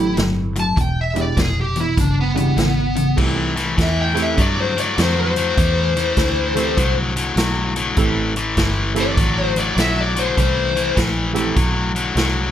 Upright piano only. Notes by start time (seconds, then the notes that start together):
Already playing: A3 C4 E4 G4
1.14 G#3 D4 E4 G4
2.34 G#3 D4 E4 G4
3.16 A3 C4 E4 G4 A4
4.14 A3 C4 E4 G4 A4
6.54 A3 C4 E4 G4 A4
7.97 A3 C4 E4 G4 A4
8.94 A3 C4 E4 G4 A4
11.33 A3 C4 E4 G4 A4